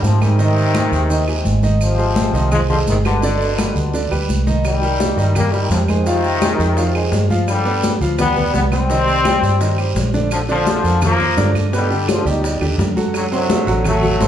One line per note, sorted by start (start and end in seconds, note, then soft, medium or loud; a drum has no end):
0.00 0.86 G#2 medium
0.00 0.15 G3 medium
0.00 0.15 G4 medium
0.00 0.15 A#4 medium
0.04 0.21 C3 medium
0.04 0.22 F3 medium
0.04 high conga medium
0.04 short guiro medium
0.04 maracas medium
0.21 1.60 C3 medium
0.21 1.60 D#3 loud
0.21 0.36 G3 medium
0.21 0.36 G4 medium
0.21 0.36 G#4 medium
0.21 high conga medium
0.21 short guiro medium
0.21 claves medium
0.21 maracas soft
0.39 0.68 D#3 medium
0.39 0.68 D#4 medium
0.39 0.68 D#5 medium
0.39 high conga soft
0.39 long guiro medium
0.39 maracas medium
0.57 high conga soft
0.57 maracas soft
0.74 1.04 G#3 medium
0.74 1.04 G4 medium
0.74 1.04 G#4 medium
0.74 high conga loud
0.74 short guiro medium
0.74 claves medium
0.74 maracas medium
0.92 1.41 D#2 loud
0.92 high conga soft
0.92 short guiro medium
0.92 maracas soft
1.10 1.24 D#3 medium
1.10 1.25 D#4 medium
1.10 1.25 D#5 medium
1.10 high conga soft
1.10 long guiro medium
1.10 maracas medium
1.28 1.57 G#3 medium
1.28 1.57 G4 medium
1.28 1.57 G#4 medium
1.28 high conga soft
1.28 claves medium
1.28 maracas soft
1.45 2.28 G#1 medium
1.45 high conga medium
1.45 short guiro medium
1.45 maracas medium
1.63 1.92 D#3 medium
1.63 1.92 D#4 medium
1.63 1.93 D#5 medium
1.63 high conga medium
1.63 short guiro medium
1.63 maracas soft
1.81 2.49 C3 medium
1.81 2.48 F3 medium
1.81 high conga soft
1.81 long guiro medium
1.81 claves medium
1.81 maracas medium
1.98 2.28 G#3 medium
1.98 2.28 G#4 medium
1.98 2.28 C5 medium
1.98 high conga soft
1.98 maracas soft
2.16 high conga loud
2.16 short guiro medium
2.16 maracas medium
2.33 2.83 C2 loud
2.33 2.48 D#3 medium
2.33 2.49 D#4 medium
2.33 2.49 D#5 medium
2.33 short guiro medium
2.33 maracas soft
2.52 2.61 F3 medium
2.52 2.66 G#3 medium
2.52 2.60 G#3 medium
2.52 2.67 G#4 medium
2.52 2.67 C5 medium
2.52 high conga soft
2.52 low conga medium
2.52 long guiro medium
2.52 claves medium
2.52 maracas medium
2.69 2.78 D3 medium
2.69 2.78 F3 medium
2.69 2.98 G#3 medium
2.69 2.99 G#4 medium
2.69 2.99 C5 medium
2.69 high conga soft
2.69 low conga medium
2.69 maracas soft
2.87 3.70 G1 medium
2.87 2.97 C3 medium
2.87 2.96 D#3 medium
2.87 high conga medium
2.87 short guiro medium
2.87 maracas medium
3.05 4.17 B2 medium
3.05 4.16 D3 medium
3.05 3.19 G3 medium
3.05 3.20 G4 medium
3.05 3.20 B4 medium
3.05 high conga medium
3.05 short guiro medium
3.05 claves medium
3.05 maracas soft
3.22 3.52 D3 medium
3.22 3.52 D4 medium
3.22 3.52 D5 medium
3.22 long guiro medium
3.22 maracas medium
3.41 maracas soft
3.58 3.87 G3 medium
3.58 3.87 G4 medium
3.58 3.88 B4 medium
3.58 high conga loud
3.58 short guiro medium
3.58 claves medium
3.58 maracas medium
3.76 4.09 D2 loud
3.76 short guiro medium
3.76 maracas soft
3.94 4.08 D3 medium
3.94 4.08 D4 medium
3.94 4.08 D5 medium
3.94 high conga soft
3.94 long guiro medium
3.94 maracas medium
4.11 4.28 D2 medium
4.11 4.40 G3 medium
4.11 4.40 G4 medium
4.11 4.41 B4 medium
4.11 high conga soft
4.11 claves medium
4.11 maracas soft
4.29 5.12 C2 medium
4.29 high conga medium
4.29 short guiro medium
4.29 maracas medium
4.47 4.76 D#3 medium
4.47 4.76 D#4 medium
4.47 4.76 D#5 medium
4.47 high conga medium
4.47 short guiro medium
4.47 maracas soft
4.65 5.33 D#3 medium
4.65 5.32 G3 medium
4.65 high bongo medium
4.65 high conga soft
4.65 long guiro medium
4.65 claves medium
4.65 maracas medium
4.82 5.11 G3 medium
4.82 5.11 G4 medium
4.82 5.12 A#4 medium
4.82 high bongo soft
4.82 high conga soft
4.82 maracas soft
5.00 high bongo medium
5.00 high conga loud
5.00 short guiro medium
5.00 maracas medium
5.17 5.67 G2 loud
5.17 5.32 D#3 medium
5.17 5.32 D#4 medium
5.17 5.32 D#5 medium
5.17 high bongo soft
5.17 short guiro medium
5.17 maracas soft
5.35 5.50 G3 medium
5.35 5.52 G3 medium
5.35 5.54 A#3 loud
5.35 5.50 G4 medium
5.35 5.50 A#4 medium
5.35 high bongo medium
5.35 high conga soft
5.35 low conga medium
5.35 long guiro medium
5.35 claves medium
5.35 maracas medium
5.53 5.72 D#3 medium
5.53 5.82 G3 medium
5.53 5.71 G3 medium
5.53 5.82 G4 medium
5.53 5.83 A#4 medium
5.53 high bongo soft
5.53 high conga soft
5.53 maracas soft
5.70 6.53 F2 medium
5.70 5.80 C3 medium
5.70 5.79 F3 medium
5.70 high bongo medium
5.70 low bongo medium
5.70 high conga medium
5.70 short guiro medium
5.70 maracas medium
5.88 7.27 C3 medium
5.88 7.26 D#3 loud
5.88 6.03 G#3 medium
5.88 6.03 G#4 medium
5.88 6.03 C5 medium
5.88 high conga medium
5.88 short guiro medium
5.88 claves medium
5.88 maracas soft
6.06 6.36 F3 medium
6.06 6.36 F4 medium
6.06 6.36 F5 medium
6.06 high bongo medium
6.06 high conga soft
6.06 long guiro medium
6.06 maracas medium
6.24 high conga soft
6.24 maracas soft
6.42 6.71 G#3 medium
6.42 6.71 G#4 medium
6.42 6.71 C5 medium
6.42 high bongo medium
6.42 high conga loud
6.42 short guiro medium
6.42 claves medium
6.42 maracas medium
6.59 7.08 F2 loud
6.59 high bongo soft
6.59 high conga soft
6.59 short guiro medium
6.59 maracas soft
6.77 6.92 F3 medium
6.77 6.92 F4 medium
6.77 6.92 F5 medium
6.77 high bongo medium
6.77 high conga soft
6.77 long guiro medium
6.77 maracas medium
6.95 7.24 G#3 medium
6.95 7.24 G#4 medium
6.95 7.24 C5 medium
6.95 high bongo soft
6.95 high conga soft
6.95 claves medium
6.95 maracas soft
7.12 7.95 G2 medium
7.12 high bongo medium
7.12 low bongo medium
7.12 high conga medium
7.12 short guiro medium
7.12 maracas medium
7.30 7.59 F3 medium
7.30 7.60 F4 medium
7.30 7.60 F5 medium
7.30 high bongo soft
7.30 high conga medium
7.30 short guiro medium
7.30 maracas soft
7.48 7.98 D3 medium
7.48 7.97 G3 loud
7.48 high bongo medium
7.48 high conga soft
7.48 long guiro medium
7.48 claves medium
7.48 maracas medium
7.65 7.94 B3 medium
7.65 7.95 B4 medium
7.65 7.95 D5 medium
7.65 high bongo soft
7.65 high conga soft
7.65 maracas soft
7.83 high bongo medium
7.83 high conga loud
7.83 short guiro medium
7.83 maracas medium
8.01 8.50 D2 loud
8.01 8.15 F3 medium
8.01 8.16 F4 medium
8.01 8.16 F5 medium
8.01 high bongo soft
8.01 short guiro medium
8.01 maracas soft
8.19 8.53 G3 medium
8.19 8.33 B3 medium
8.19 8.52 B3 loud
8.19 8.33 B4 medium
8.19 8.34 D5 medium
8.19 high bongo medium
8.19 high conga soft
8.19 low conga medium
8.19 long guiro medium
8.19 claves medium
8.19 maracas medium
8.36 8.66 B3 medium
8.36 8.66 B4 medium
8.36 8.66 D5 medium
8.36 high bongo soft
8.36 high conga soft
8.36 low conga medium
8.36 maracas soft
8.54 9.37 C2 loud
8.54 8.64 G3 medium
8.54 8.62 B3 medium
8.54 high bongo medium
8.54 low bongo medium
8.54 high conga medium
8.54 short guiro medium
8.54 maracas medium
8.72 8.87 G3 medium
8.72 9.93 G3 medium
8.72 9.92 C4 loud
8.72 8.87 G4 medium
8.72 8.87 C5 medium
8.72 high conga medium
8.72 short guiro medium
8.72 claves medium
8.72 maracas soft
8.90 9.19 D#3 medium
8.90 9.19 D#4 medium
8.90 9.19 D#5 medium
8.90 high bongo medium
8.90 high conga soft
8.90 long guiro medium
8.90 maracas medium
9.08 high conga soft
9.08 maracas soft
9.24 9.54 G3 medium
9.24 9.54 G4 medium
9.24 9.55 C5 medium
9.24 high bongo medium
9.24 high conga loud
9.24 short guiro medium
9.24 claves medium
9.24 maracas medium
9.42 9.92 G2 loud
9.42 high bongo soft
9.42 short guiro medium
9.42 maracas soft
9.61 9.75 D#3 medium
9.61 9.75 D#4 medium
9.61 9.75 D#5 medium
9.61 high bongo medium
9.61 high conga soft
9.61 long guiro medium
9.61 maracas medium
9.78 10.07 G3 medium
9.78 10.08 G4 medium
9.78 10.08 C5 medium
9.78 high bongo soft
9.78 high conga soft
9.78 claves medium
9.78 maracas soft
9.95 10.78 A#1 medium
9.95 high bongo medium
9.95 low bongo medium
9.95 high conga medium
9.95 short guiro medium
9.95 maracas medium
10.14 10.28 D3 medium
10.14 10.28 D4 medium
10.14 10.28 D5 medium
10.14 high bongo soft
10.14 high conga medium
10.14 short guiro medium
10.14 maracas soft
10.31 10.41 D3 medium
10.31 10.40 F3 medium
10.31 high bongo medium
10.31 long guiro medium
10.31 claves medium
10.31 maracas medium
10.48 10.78 D3 medium
10.48 11.00 D3 medium
10.48 11.00 F3 loud
10.48 10.78 D4 medium
10.48 10.78 D5 medium
10.48 high bongo soft
10.48 high conga soft
10.48 maracas soft
10.67 high bongo medium
10.67 high conga medium
10.67 short guiro medium
10.67 maracas medium
10.84 11.34 F2 medium
10.84 11.13 F3 medium
10.84 11.14 F4 medium
10.84 11.14 A#4 medium
10.84 short guiro medium
10.84 maracas soft
11.02 11.52 F3 medium
11.02 11.53 A#3 loud
11.02 high bongo medium
11.02 high conga soft
11.02 low conga medium
11.02 long guiro medium
11.02 claves medium
11.02 maracas medium
11.19 11.34 F3 medium
11.19 11.34 F4 medium
11.19 11.34 A#4 medium
11.19 high bongo soft
11.19 high conga soft
11.19 low conga medium
11.19 maracas soft
11.37 12.20 G2 medium
11.37 11.66 D3 medium
11.37 11.66 D4 medium
11.37 11.67 D5 medium
11.37 high bongo medium
11.37 low bongo medium
11.37 high conga medium
11.37 short guiro medium
11.37 maracas medium
11.55 high conga medium
11.55 short guiro medium
11.55 claves medium
11.55 maracas soft
11.72 11.87 B2 medium
11.72 12.07 D3 medium
11.72 12.07 G3 medium
11.72 11.88 B3 medium
11.72 11.88 B4 medium
11.72 high bongo medium
11.72 long guiro medium
11.72 maracas medium
11.91 12.20 D3 medium
11.91 12.20 D4 medium
11.91 12.20 G4 medium
11.91 high conga soft
11.91 maracas soft
12.08 12.27 D3 medium
12.08 12.27 F3 medium
12.08 high bongo medium
12.08 high conga loud
12.08 short guiro medium
12.08 claves medium
12.08 maracas medium
12.25 12.59 D2 loud
12.25 12.55 B2 medium
12.25 12.76 G3 medium
12.25 12.76 D#4 medium
12.25 12.55 G4 medium
12.25 12.55 D5 medium
12.25 high bongo soft
12.25 high conga soft
12.25 short guiro medium
12.25 maracas soft
12.44 high bongo medium
12.44 high conga soft
12.44 long guiro medium
12.44 maracas medium
12.61 12.77 D#2 medium
12.61 12.90 D3 medium
12.61 12.90 D4 medium
12.61 12.91 G4 medium
12.61 high bongo soft
12.61 high conga soft
12.61 claves medium
12.61 maracas soft
12.78 13.61 F#2 medium
12.78 high bongo medium
12.78 low bongo medium
12.78 high conga medium
12.78 short guiro medium
12.78 maracas medium
12.96 13.26 F#3 medium
12.96 13.26 F#4 medium
12.96 13.26 A4 medium
12.96 high bongo soft
12.96 high conga medium
12.96 short guiro medium
12.96 maracas soft
13.14 13.24 D3 medium
13.14 13.24 F#3 medium
13.14 high bongo medium
13.14 high conga soft
13.14 long guiro medium
13.14 claves medium
13.14 maracas medium
13.32 13.61 C3 medium
13.32 13.82 D3 medium
13.32 13.83 F#3 loud
13.32 13.61 C4 medium
13.32 13.61 C5 medium
13.32 high bongo soft
13.32 high conga soft
13.32 maracas soft
13.50 high bongo medium
13.50 high conga loud
13.50 short guiro medium
13.50 maracas medium
13.67 14.17 A1 loud
13.67 13.96 F#3 medium
13.67 13.96 F#4 medium
13.67 13.96 A4 medium
13.67 high bongo soft
13.67 short guiro medium
13.67 maracas soft
13.85 14.28 F#3 medium
13.85 14.28 A3 loud
13.85 high bongo medium
13.85 high conga soft
13.85 low conga medium
13.85 long guiro medium
13.85 claves medium
13.85 maracas medium
14.02 14.17 F#3 medium
14.02 14.17 F#4 medium
14.02 14.18 A4 medium
14.02 high bongo soft
14.02 high conga soft
14.02 low conga medium
14.02 maracas soft
14.20 14.28 G1 medium
14.20 14.28 C3 medium
14.20 14.28 C4 medium
14.20 14.28 C5 medium
14.20 high bongo medium
14.20 low bongo medium
14.20 high conga medium
14.20 short guiro medium
14.20 maracas medium